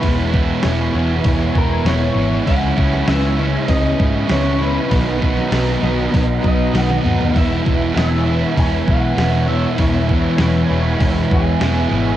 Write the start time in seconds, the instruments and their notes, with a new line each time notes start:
Already playing: analog synth pad B3 E4 C#5 G#5, clean electric guitar B4
0.01 picked electric bass E1, distorted electric guitar E2 B2 E3, overdriven electric guitar E3 G#3 B3 E4, kick, open hi-hat
0.31 overdriven electric guitar B3 E4, kick
0.35 distorted electric guitar B2 E3, overdriven electric guitar G#3
0.61 picked electric bass E1, distorted electric guitar E2, overdriven electric guitar E3 G#3 B3 E4, snare, open hi-hat
0.66 distorted electric guitar B2 E3
0.93 picked electric bass E1, distorted electric guitar E3, overdriven electric guitar G#3 B3 E4
0.97 distorted electric guitar B2
1.24 picked electric bass E1, distorted electric guitar E2 B2 E3, kick, open hi-hat
1.55 picked electric bass E1, distorted electric guitar B2 E3, clean electric guitar A#4, kick
1.85 picked electric bass E1, distorted electric guitar E2 B2 E3, overdriven electric guitar E3 G#3 B3 E4, clean electric guitar C#5, snare, open hi-hat
2.15 picked electric bass G#1, distorted electric guitar B2 E3, overdriven electric guitar B3 E4
2.19 overdriven electric guitar G#3
2.45 picked electric bass C#2, overdriven electric guitar C#3 G#3 C#4 E4, distorted electric guitar C#3 G#3 C#4, analog synth pad E4, clean electric guitar F#5, kick, open hi-hat
2.76 picked electric bass C#2, distorted electric guitar G#3 C#4, overdriven electric guitar G#3 C#4 E4, kick
2.93 snare
3.06 picked electric bass C#2, overdriven electric guitar C#3 G#3 C#4 E4, distorted electric guitar C#3 G#3 C#4, clean electric guitar E5, snare, open hi-hat
3.37 overdriven electric guitar G#3 C#4 E4, distorted electric guitar C#4
3.42 distorted electric guitar G#3
3.68 picked electric bass C#2, distorted electric guitar C#3 G#3 C#4, clean electric guitar D#5, kick, open hi-hat
4.00 picked electric bass G#2, distorted electric guitar G#3 C#4, kick
4.27 picked electric bass C#2, overdriven electric guitar C#3 G#3 C#4 E4, distorted electric guitar C#3, clean electric guitar C#5, snare, open hi-hat
4.32 distorted electric guitar G#3 C#4
4.58 overdriven electric guitar G#3 C#4 E4, distorted electric guitar C#4
4.64 distorted electric guitar G#3, clean electric guitar B4
4.89 picked electric bass B1, overdriven electric guitar B2 D#3 F#3 B3 D#4, distorted electric guitar B2 F#3, analog synth pad F#4 D#5 A#5, kick, open hi-hat
4.94 distorted electric guitar B3
5.19 overdriven electric guitar F#3 B3 D#4, kick
5.23 distorted electric guitar F#3 B3
5.37 snare
5.51 picked electric bass B1, distorted electric guitar B2 F#3 B3, overdriven electric guitar D#3 F#3 B3 D#4, snare, open hi-hat
5.81 picked electric bass B1, distorted electric guitar B3, overdriven electric guitar B3 D#4, snare
5.85 overdriven electric guitar F#3, distorted electric guitar F#3
6.12 picked electric bass B1, distorted electric guitar B2 F#3 B3, kick, open hi-hat
6.43 picked electric bass B1, distorted electric guitar F#3 B3, kick
6.48 clean electric guitar D#5
6.72 picked electric bass B1, distorted electric guitar B2 F#3, overdriven electric guitar D#3 F#3 B3 D#4, snare, open hi-hat
6.76 distorted electric guitar B3, clean electric guitar F#5
6.90 high tom
7.03 picked electric bass D#2, overdriven electric guitar F#3 B3 D#4, distorted electric guitar B3, mid tom
7.07 distorted electric guitar F#3
7.21 floor tom
7.31 overdriven electric guitar E3 G#3 B3 E4
7.36 picked electric bass E1, distorted electric guitar E2 B2 E3, analog synth pad E4 C#5 G#5, clean electric guitar E5, kick, open hi-hat
7.62 distorted electric guitar E3, overdriven electric guitar G#3 B3 E4
7.66 picked electric bass E1, distorted electric guitar B2, kick
7.93 picked electric bass E1, distorted electric guitar E2, overdriven electric guitar E3 G#3 B3 E4
7.97 distorted electric guitar B2 E3, clean electric guitar E5, snare, open hi-hat
8.24 distorted electric guitar E3, overdriven electric guitar G#3 B3 E4
8.29 distorted electric guitar B2
8.57 picked electric bass E1, distorted electric guitar E2 B2 E3, clean electric guitar G#5, kick, open hi-hat
8.87 picked electric bass B1, distorted electric guitar B2 E3, clean electric guitar F#5, kick
9.15 picked electric bass E1, distorted electric guitar E2, overdriven electric guitar E3 G#3 B3 E4, snare, open hi-hat
9.20 distorted electric guitar B2 E3
9.47 distorted electric guitar B2 E3, overdriven electric guitar G#3 B3 E4, clean electric guitar E5
9.78 picked electric bass E1, distorted electric guitar E2 B2 E3, overdriven electric guitar E3 G#3 B3 E4, kick, open hi-hat
10.08 distorted electric guitar B2 E3, overdriven electric guitar B3 E4, kick
10.12 overdriven electric guitar G#3
10.38 picked electric bass E1, distorted electric guitar E2 B2 E3, overdriven electric guitar E3 G#3 B3 E4, snare, open hi-hat
10.69 picked electric bass E1, distorted electric guitar B2 E3, overdriven electric guitar G#3 B3 E4
11.00 picked electric bass E1, distorted electric guitar E2 B2 E3, kick, open hi-hat
11.31 picked electric bass E1, distorted electric guitar B2 E3, clean electric guitar G#4, kick
11.60 picked electric bass E1, distorted electric guitar E2 B2 E3, overdriven electric guitar E3 G#3 B3 E4, snare, open hi-hat
11.89 picked electric bass G#1, distorted electric guitar E3, overdriven electric guitar G#3 B3 E4
11.95 distorted electric guitar B2